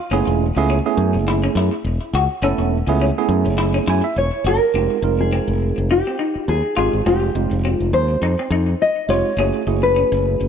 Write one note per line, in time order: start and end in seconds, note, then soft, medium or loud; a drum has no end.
0.11 0.24 F#1 medium
0.11 0.45 A3 medium
0.11 0.45 B3 medium
0.11 0.27 C#4 medium
0.11 0.45 C#4 medium
0.11 0.45 E4 medium
0.11 0.45 G#4 medium
0.27 0.50 E1 medium
0.56 0.79 C#2 medium
0.56 0.78 A3 medium
0.56 0.78 B3 medium
0.56 0.78 C#4 medium
0.56 0.78 E4 medium
0.56 0.78 G#4 loud
0.70 0.85 C#4 medium
0.86 1.72 A3 medium
0.86 1.72 B3 medium
0.86 1.72 C#4 medium
0.86 1.72 E4 medium
0.86 1.72 G#4 medium
0.97 1.16 F#2 medium
1.14 1.47 F#1 medium
1.28 1.36 E4 medium
1.44 1.50 C#4 medium
1.55 1.68 F#2 medium
1.55 1.72 E4 medium
1.84 1.97 E1 medium
2.13 2.26 C#2 medium
2.13 2.30 F#4 medium
2.42 2.55 F#1 medium
2.42 2.76 A3 medium
2.42 2.76 B3 medium
2.42 2.59 C#4 medium
2.42 2.76 C#4 medium
2.42 2.76 E4 medium
2.42 2.77 A4 medium
2.58 2.81 E1 medium
2.87 3.10 C#2 medium
2.87 3.09 A3 medium
2.87 3.09 B3 medium
2.87 3.10 C#4 medium
2.87 3.09 E4 medium
2.87 3.09 G#4 medium
3.02 3.17 C#4 medium
3.18 4.04 A3 medium
3.18 4.04 B3 medium
3.18 4.04 C#4 medium
3.18 4.04 E4 medium
3.18 4.04 G#4 medium
3.29 3.47 F#2 medium
3.45 3.78 F#1 medium
3.58 3.67 E4 medium
3.74 3.81 C#4 medium
3.87 4.00 F#2 medium
3.87 4.03 E4 medium
3.87 4.04 G#5 medium
4.04 4.16 E5 medium
4.16 4.29 E1 medium
4.16 4.71 C#5 medium
4.16 4.47 C#5 medium
4.44 4.58 F#1 medium
4.44 4.62 F#4 medium
4.44 5.20 A#4 medium
4.74 4.87 F1 medium
4.74 4.97 G#3 medium
4.74 4.90 C4 medium
4.74 4.97 C4 medium
4.74 4.97 D#4 medium
4.74 4.97 F4 medium
4.74 4.97 G4 medium
5.02 5.38 F1 medium
5.02 5.90 G#3 medium
5.02 5.90 C4 medium
5.02 5.90 D#4 medium
5.02 5.90 F4 medium
5.02 5.90 A#4 medium
5.20 5.91 G#4 medium
5.33 5.48 C4 medium
5.48 5.71 F1 medium
5.78 6.00 F1 medium
5.91 5.99 D#4 medium
5.91 6.49 G4 medium
6.07 6.14 C4 medium
6.19 6.35 D#4 medium
6.35 muted fingered electric bass stroke soft
6.48 6.61 D#2 medium
6.48 6.76 G#4 medium
6.77 6.90 G#1 medium
6.77 7.00 G#3 medium
6.77 7.00 C4 medium
6.77 7.00 D#4 medium
6.77 6.92 F4 medium
6.77 7.00 F4 medium
6.77 7.01 G4 medium
6.77 7.06 G#4 medium
6.93 7.03 G#1 medium
7.06 7.29 F1 medium
7.06 7.29 G#3 medium
7.06 7.22 C4 medium
7.06 7.29 C4 medium
7.06 7.29 D#4 medium
7.06 7.29 F4 medium
7.06 7.71 G4 medium
7.06 7.29 G#4 medium
7.35 7.48 F1 medium
7.35 8.22 G#3 medium
7.35 8.22 C4 soft
7.35 8.22 D#4 medium
7.35 8.22 F4 medium
7.35 8.22 G4 medium
7.51 7.74 F1 medium
7.65 7.80 C4 medium
7.71 7.93 F4 medium
7.80 7.90 F1 medium
7.93 8.16 D#2 medium
7.93 8.81 C5 medium
8.22 8.35 F2 medium
8.22 8.31 D#4 medium
8.39 8.46 C4 medium
8.50 8.73 F2 medium
8.50 8.67 D#4 medium
8.82 9.09 D#5 medium
9.09 9.22 F1 medium
9.09 9.31 G#3 medium
9.09 9.32 C4 medium
9.09 9.32 D#4 medium
9.09 9.32 F4 medium
9.09 9.25 F4 medium
9.09 9.32 G4 medium
9.09 9.83 C#5 medium
9.37 9.50 F#1 medium
9.37 9.61 A3 medium
9.37 9.54 C#4 medium
9.37 9.61 C#4 medium
9.37 9.61 E4 medium
9.37 9.61 F#4 medium
9.37 9.61 G#4 medium
9.67 10.02 F#1 medium
9.67 10.48 A3 medium
9.67 10.48 C#4 medium
9.67 10.48 E4 medium
9.67 10.48 F#4 medium
9.67 10.48 G#4 medium
9.83 10.48 B4 medium
9.96 10.12 C#4 medium
10.12 10.35 F#1 medium
10.40 10.48 F#1 medium